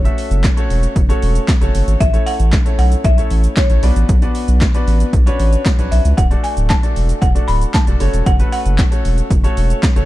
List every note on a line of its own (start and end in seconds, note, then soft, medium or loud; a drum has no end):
0.00 1.18 C#5 medium
0.05 0.45 A3 medium
0.05 0.45 C#4 medium
0.05 0.45 F#4 medium
0.05 0.45 A4 medium
0.05 0.45 E5 medium
0.05 closed hi-hat soft
0.05 shaker soft
0.18 open hi-hat medium
0.18 shaker medium
0.31 0.47 F#1 loud
0.31 closed hi-hat medium
0.31 shaker medium
0.44 kick loud
0.44 snare medium
0.44 clap loud
0.44 closed hi-hat medium
0.44 shaker medium
0.57 0.97 A3 medium
0.57 0.97 C#4 medium
0.57 0.97 F#4 medium
0.57 0.97 A4 medium
0.57 0.98 C#5 loud
0.57 closed hi-hat soft
0.57 shaker soft
0.70 0.87 E1 loud
0.70 open hi-hat medium
0.70 shaker medium
0.83 closed hi-hat medium
0.83 shaker medium
0.96 1.13 F#1 loud
0.96 kick loud
0.96 closed hi-hat medium
0.96 shaker medium
1.09 1.49 A3 loud
1.09 1.50 C#4 medium
1.09 1.50 F#4 medium
1.09 1.50 A4 medium
1.09 1.50 C#5 loud
1.09 closed hi-hat medium
1.09 shaker medium
1.22 1.39 E1 loud
1.22 open hi-hat medium
1.22 shaker soft
1.35 closed hi-hat medium
1.35 shaker medium
1.48 kick loud
1.48 snare loud
1.48 clap loud
1.48 closed hi-hat medium
1.48 shaker medium
1.61 1.70 F#1 loud
1.61 2.00 A3 medium
1.61 2.00 C#4 medium
1.61 2.00 F#4 medium
1.61 2.00 A4 medium
1.61 2.00 C#5 medium
1.61 closed hi-hat soft
1.61 shaker soft
1.74 1.83 F#1 loud
1.74 open hi-hat medium
1.74 shaker medium
1.87 1.96 G#1 medium
1.87 closed hi-hat medium
1.87 shaker medium
2.00 2.17 A1 loud
2.00 2.25 E5 loud
2.00 kick loud
2.00 closed hi-hat medium
2.00 shaker medium
2.13 2.54 A3 medium
2.13 2.54 C#4 medium
2.13 2.54 E4 medium
2.13 2.54 A4 medium
2.13 2.54 C#5 medium
2.13 closed hi-hat soft
2.13 shaker medium
2.26 2.78 F#5 loud
2.26 open hi-hat medium
2.26 shaker medium
2.40 2.56 A1 loud
2.40 closed hi-hat medium
2.40 shaker medium
2.53 kick loud
2.53 snare medium
2.53 clap loud
2.53 closed hi-hat medium
2.53 shaker medium
2.65 3.06 A3 medium
2.65 3.06 C#4 medium
2.65 3.06 E4 medium
2.65 3.06 A4 medium
2.65 3.06 C#5 medium
2.65 closed hi-hat medium
2.65 shaker medium
2.78 2.95 B1 medium
2.78 3.05 F#5 loud
2.78 open hi-hat medium
2.78 shaker medium
2.92 closed hi-hat medium
2.92 shaker medium
3.04 3.21 B1 loud
3.04 3.58 E5 loud
3.04 kick loud
3.04 closed hi-hat medium
3.04 shaker medium
3.18 3.58 A3 medium
3.18 3.58 C#4 medium
3.18 3.58 E4 medium
3.18 3.58 A4 medium
3.18 3.58 C#5 medium
3.18 closed hi-hat medium
3.18 shaker medium
3.31 3.47 A1 loud
3.31 open hi-hat medium
3.31 shaker soft
3.44 closed hi-hat medium
3.44 shaker medium
3.57 3.84 C#5 medium
3.57 kick loud
3.57 snare loud
3.57 clap loud
3.57 closed hi-hat medium
3.57 shaker medium
3.70 3.78 A1 medium
3.70 3.83 A3 medium
3.70 3.83 C#4 medium
3.70 3.83 E4 medium
3.70 3.83 A4 medium
3.70 3.83 C#5 medium
3.70 closed hi-hat soft
3.70 shaker soft
3.83 3.91 B1 loud
3.83 4.14 B3 medium
3.83 4.14 D4 medium
3.83 4.14 F#4 medium
3.83 4.14 B4 medium
3.83 4.14 D5 medium
3.83 5.36 D5 medium
3.83 open hi-hat loud
3.83 shaker medium
3.96 4.04 A1 loud
3.96 closed hi-hat medium
3.96 shaker medium
4.09 4.26 B1 loud
4.09 kick loud
4.09 closed hi-hat medium
4.09 shaker medium
4.22 4.62 B3 medium
4.22 4.63 D4 medium
4.22 4.63 F#4 medium
4.22 4.63 B4 medium
4.22 4.63 D5 medium
4.22 closed hi-hat soft
4.22 shaker soft
4.35 open hi-hat medium
4.35 shaker medium
4.48 4.65 B1 loud
4.48 closed hi-hat medium
4.48 shaker medium
4.61 kick loud
4.61 snare medium
4.61 clap loud
4.61 closed hi-hat medium
4.61 shaker medium
4.74 5.15 B3 medium
4.74 5.15 D4 medium
4.74 5.15 F#4 medium
4.74 5.15 B4 medium
4.74 5.15 D5 loud
4.74 closed hi-hat soft
4.74 shaker soft
4.87 5.04 A1 medium
4.87 open hi-hat medium
4.87 shaker medium
5.00 closed hi-hat medium
5.00 shaker medium
5.13 5.30 B1 loud
5.13 kick loud
5.13 closed hi-hat medium
5.13 shaker medium
5.26 5.67 C#4 loud
5.26 5.67 D4 medium
5.26 5.67 F#4 medium
5.26 5.67 B4 medium
5.26 5.67 C#5 loud
5.26 closed hi-hat medium
5.26 shaker medium
5.39 5.56 A1 loud
5.39 open hi-hat medium
5.39 shaker soft
5.53 closed hi-hat medium
5.53 shaker medium
5.66 kick loud
5.66 snare loud
5.66 clap loud
5.66 closed hi-hat medium
5.66 shaker medium
5.79 5.87 B1 medium
5.79 6.18 C#4 medium
5.79 6.18 D4 medium
5.79 6.18 F#4 medium
5.79 6.18 B4 medium
5.79 6.18 C#5 medium
5.79 closed hi-hat soft
5.79 shaker soft
5.91 6.00 B1 medium
5.91 6.16 E5 medium
5.91 open hi-hat loud
5.91 shaker medium
6.05 6.13 C#2 medium
6.05 closed hi-hat medium
6.05 shaker medium
6.17 6.35 D1 loud
6.17 6.44 F#5 loud
6.17 kick loud
6.17 closed hi-hat medium
6.17 shaker medium
6.31 6.71 A3 medium
6.31 6.71 D4 medium
6.31 6.71 F#4 medium
6.31 6.71 A4 medium
6.31 6.71 D5 medium
6.31 closed hi-hat soft
6.31 shaker soft
6.44 6.68 G#5 medium
6.44 open hi-hat medium
6.44 shaker medium
6.57 6.74 D1 loud
6.57 closed hi-hat medium
6.57 shaker medium
6.69 7.23 A5 loud
6.69 kick loud
6.69 snare medium
6.69 clap loud
6.69 closed hi-hat medium
6.69 shaker medium
6.83 7.23 A3 medium
6.83 7.24 D4 medium
6.83 7.24 F#4 medium
6.83 7.24 A4 medium
6.83 7.24 D5 medium
6.83 closed hi-hat soft
6.83 shaker soft
6.96 7.13 E1 medium
6.96 open hi-hat medium
6.96 shaker medium
7.09 closed hi-hat medium
7.09 shaker medium
7.22 7.39 E1 loud
7.22 7.49 F#5 loud
7.22 kick loud
7.22 closed hi-hat medium
7.22 shaker medium
7.35 7.75 A3 medium
7.35 7.76 D4 medium
7.35 7.76 F#4 medium
7.35 7.76 A4 medium
7.35 7.76 D5 medium
7.35 closed hi-hat medium
7.35 shaker medium
7.48 7.65 D1 loud
7.48 7.75 B5 loud
7.48 open hi-hat medium
7.48 shaker soft
7.61 closed hi-hat medium
7.61 shaker medium
7.74 8.23 A5 loud
7.74 kick loud
7.74 snare loud
7.74 clap loud
7.74 closed hi-hat medium
7.74 shaker medium
7.87 7.96 E1 loud
7.87 7.99 A3 medium
7.87 8.00 D4 medium
7.87 7.99 F#4 medium
7.87 7.99 A4 medium
7.87 8.01 D5 medium
7.87 closed hi-hat medium
7.87 shaker medium
8.00 8.09 F#1 loud
8.00 8.31 A3 medium
8.00 8.32 C#4 medium
8.00 8.32 F#4 medium
8.00 8.32 A4 medium
8.00 8.32 C#5 loud
8.00 open hi-hat medium
8.00 shaker medium
8.13 8.22 E1 medium
8.13 closed hi-hat medium
8.13 shaker medium
8.26 8.43 F#1 loud
8.26 8.51 F#5 loud
8.26 kick loud
8.26 closed hi-hat medium
8.26 shaker medium
8.39 8.80 A3 medium
8.39 8.80 C#4 medium
8.39 8.80 F#4 medium
8.39 8.80 A4 medium
8.39 8.80 B4 medium
8.39 closed hi-hat soft
8.39 shaker soft
8.52 10.05 F#5 medium
8.52 open hi-hat medium
8.52 shaker medium
8.66 8.82 F#1 loud
8.66 closed hi-hat medium
8.66 shaker medium
8.78 kick loud
8.78 snare medium
8.78 clap loud
8.78 closed hi-hat medium
8.78 shaker medium
8.91 9.32 A3 medium
8.91 9.32 C#4 medium
8.91 9.32 F#4 medium
8.91 9.32 A4 medium
8.91 9.32 C#5 medium
8.91 closed hi-hat soft
8.91 shaker soft
9.05 9.21 E1 medium
9.05 open hi-hat medium
9.05 shaker medium
9.18 closed hi-hat medium
9.18 shaker medium
9.30 9.47 F#1 loud
9.30 kick loud
9.30 closed hi-hat medium
9.30 shaker medium
9.44 9.84 A3 loud
9.44 9.84 C#4 medium
9.44 9.84 F#4 medium
9.44 9.84 A4 medium
9.44 9.84 C#5 loud
9.44 closed hi-hat medium
9.44 shaker medium
9.57 9.74 E1 loud
9.57 open hi-hat medium
9.57 shaker medium
9.70 closed hi-hat medium
9.70 shaker medium
9.83 kick loud
9.83 snare loud
9.83 clap loud
9.83 closed hi-hat medium
9.83 shaker medium
9.96 10.04 F#1 loud
9.96 10.05 A3 medium
9.96 10.05 C#4 medium
9.96 10.05 F#4 medium
9.96 10.05 A4 medium
9.96 10.05 C#5 loud
9.96 closed hi-hat soft
9.96 shaker soft